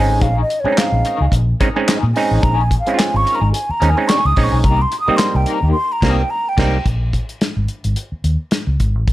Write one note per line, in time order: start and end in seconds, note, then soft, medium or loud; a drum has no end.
0.00 0.33 G#3 medium
0.00 0.34 C4 medium
0.00 0.34 C#4 medium
0.00 0.34 D#4 medium
0.00 0.24 G#5 medium
0.09 0.18 A1 medium
0.09 0.20 C#4 soft
0.09 0.20 D#4 medium
0.09 0.21 G#4 medium
0.21 0.42 A#1 loud
0.21 0.40 C#4 medium
0.21 0.40 D#4 medium
0.21 0.40 G#4 medium
0.21 0.40 F5 loud
0.21 kick loud
0.21 closed hi-hat medium
0.42 0.62 D#5 medium
0.50 muted clean electric guitar stroke soft
0.50 closed hi-hat medium
0.60 0.80 C#5 medium
0.64 1.18 G#3 medium
0.64 1.18 C4 medium
0.64 1.18 C#4 medium
0.64 0.76 C#4 medium
0.64 0.71 D4 medium
0.64 0.77 D#4 medium
0.64 0.76 G#4 medium
0.64 muted fingered electric bass stroke medium
0.72 1.21 D#4 medium
0.77 1.33 F5 medium
0.77 muted clean electric guitar stroke soft
0.77 snare loud
0.77 clap loud
0.77 closed hi-hat medium
0.92 1.01 A#1 loud
0.92 muted clean electric guitar stroke soft
1.05 1.20 C#4 medium
1.05 1.20 D#4 medium
1.05 1.21 A#4 medium
1.05 closed hi-hat medium
1.20 1.29 C#2 medium
1.20 1.32 C#4 medium
1.20 1.33 D#4 medium
1.20 1.33 G#4 medium
1.32 1.52 A#1 loud
1.32 muted clean electric guitar stroke soft
1.32 kick medium
1.32 closed hi-hat medium
1.60 1.69 G#3 medium
1.60 1.69 C4 medium
1.60 1.75 C#4 medium
1.60 1.69 C#4 medium
1.60 1.75 D#4 medium
1.60 1.69 D#4 loud
1.60 1.76 A#4 medium
1.60 kick medium
1.60 closed hi-hat medium
1.76 1.98 G#3 loud
1.76 1.98 C4 medium
1.76 1.98 C#4 medium
1.76 1.98 D#4 loud
1.76 muted clean electric guitar stroke soft
1.86 2.05 C#4 medium
1.86 2.06 D#4 medium
1.86 2.06 G#4 medium
1.86 snare loud
1.86 clap loud
1.86 closed hi-hat loud
2.03 2.12 A#2 loud
2.14 2.55 G#3 medium
2.14 2.55 C4 medium
2.14 2.55 C#4 medium
2.14 2.55 D#4 loud
2.14 2.44 G#5 medium
2.14 muted clean electric guitar stroke soft
2.14 open hi-hat medium
2.31 2.40 A1 medium
2.31 2.41 C#4 medium
2.31 2.42 D#4 medium
2.31 2.42 G#4 medium
2.42 2.75 A#1 loud
2.42 2.61 C#4 medium
2.42 2.61 D#4 medium
2.42 2.62 G#4 medium
2.42 2.63 A#5 loud
2.42 kick loud
2.42 closed hi-hat medium
2.61 2.79 G#5 medium
2.70 muted clean electric guitar stroke soft
2.70 kick loud
2.70 closed hi-hat medium
2.79 2.99 F5 medium
2.86 3.39 G#3 medium
2.86 3.39 C4 medium
2.86 3.39 C#4 medium
2.86 2.96 C#4 soft
2.86 2.97 D#4 medium
2.86 2.93 E4 medium
2.86 2.98 G#4 medium
2.86 closed hi-hat medium
2.94 3.43 F4 medium
2.94 3.18 G#5 medium
2.94 muted clean electric guitar stroke soft
2.99 snare loud
2.99 clap loud
2.99 closed hi-hat medium
3.14 3.23 G#1 medium
3.14 3.37 C#6 loud
3.14 muted clean electric guitar stroke soft
3.25 3.40 C#4 medium
3.25 3.40 D#4 medium
3.25 3.41 A#4 medium
3.25 closed hi-hat medium
3.35 3.52 A#5 medium
3.41 3.50 G#1 loud
3.41 3.50 C#4 medium
3.41 3.51 D#4 medium
3.41 3.52 G#4 medium
3.52 3.72 G#5 medium
3.52 muted clean electric guitar stroke soft
3.52 closed hi-hat medium
3.69 3.91 A#5 loud
3.69 muted fingered electric bass stroke soft
3.80 3.93 D#2 loud
3.80 3.90 G#3 medium
3.80 3.90 C4 medium
3.80 3.95 C#4 medium
3.80 3.90 C#4 medium
3.80 3.96 D#4 medium
3.80 3.90 D#4 medium
3.80 3.96 A#4 medium
3.80 closed hi-hat medium
3.89 4.09 G#5 loud
3.97 4.19 G#3 medium
3.97 4.19 C4 medium
3.97 4.19 C#4 medium
3.97 4.19 D#4 medium
3.97 muted clean electric guitar stroke soft
4.08 4.30 C#4 medium
4.08 4.30 D#4 medium
4.08 4.30 G#4 medium
4.08 4.28 C#6 loud
4.08 snare loud
4.08 clap medium
4.08 closed hi-hat loud
4.25 4.34 C#2 loud
4.25 4.45 D#6 loud
4.36 4.48 A#1 medium
4.36 4.64 G#3 medium
4.36 4.64 C4 medium
4.36 4.65 C#4 medium
4.36 4.65 D#4 loud
4.36 muted clean electric guitar stroke soft
4.36 kick medium
4.36 open hi-hat medium
4.44 4.61 C#6 medium
4.52 4.64 B1 medium
4.52 4.62 C#4 soft
4.52 4.62 D#4 medium
4.52 4.63 G#4 medium
4.62 4.84 C2 loud
4.62 4.82 A#3 medium
4.62 4.82 D#4 medium
4.62 4.82 G4 medium
4.62 4.83 A#5 loud
4.62 kick loud
4.62 closed hi-hat medium
4.82 4.99 C6 medium
4.92 muted clean electric guitar stroke soft
4.92 closed hi-hat medium
5.00 5.18 D#6 loud
5.06 5.60 G3 medium
5.06 5.19 A#3 medium
5.06 5.60 A#3 medium
5.06 5.60 C4 medium
5.06 5.19 D#4 medium
5.06 5.60 D#4 loud
5.06 5.18 G4 medium
5.06 muted fingered electric bass stroke soft
5.17 5.37 C6 loud
5.17 snare loud
5.17 clap medium
5.17 closed hi-hat medium
5.34 5.44 C2 medium
5.34 5.56 G5 loud
5.34 muted clean electric guitar stroke soft
5.46 5.61 A#3 medium
5.46 5.62 D#4 medium
5.46 5.62 A#4 medium
5.46 closed hi-hat medium
5.54 5.71 A#5 medium
5.62 5.71 D#2 loud
5.62 5.75 A#3 medium
5.62 5.75 D#4 medium
5.62 5.74 G4 medium
5.72 5.94 C6 medium
5.92 6.12 A#5 medium
6.01 6.22 C2 loud
6.01 6.22 G3 medium
6.01 6.21 A#3 loud
6.01 6.22 A#3 medium
6.01 6.22 C4 medium
6.01 6.22 D#4 loud
6.01 6.22 A#4 loud
6.01 kick medium
6.01 snare loud
6.01 crash medium
6.11 6.32 G5 medium
6.30 6.50 A#5 loud
6.49 6.86 G5 medium
6.57 6.77 C2 medium
6.57 6.78 G3 loud
6.57 6.77 A#3 medium
6.57 6.78 A#3 loud
6.57 6.78 C4 loud
6.57 6.77 D#4 loud
6.57 6.78 D#4 loud
6.57 6.78 G4 medium
6.57 kick loud
6.57 snare loud
6.57 crash medium
6.86 7.17 A#1 medium
6.86 kick loud
6.86 closed hi-hat medium
7.13 kick medium
7.13 closed hi-hat medium
7.29 closed hi-hat soft
7.41 snare loud
7.41 closed hi-hat medium
7.56 7.66 G#1 medium
7.68 closed hi-hat medium
7.84 7.93 G#1 medium
7.84 closed hi-hat medium
7.96 closed hi-hat medium
8.12 muted fingered electric bass stroke soft
8.24 8.36 D#2 medium
8.24 closed hi-hat medium
8.51 snare loud
8.51 closed hi-hat medium
8.67 8.76 C#2 medium
8.80 8.95 G#1 medium
8.80 kick medium
8.80 closed hi-hat medium
8.95 9.04 A1 medium
9.08 9.13 A#1 medium
9.08 kick loud
9.08 closed hi-hat medium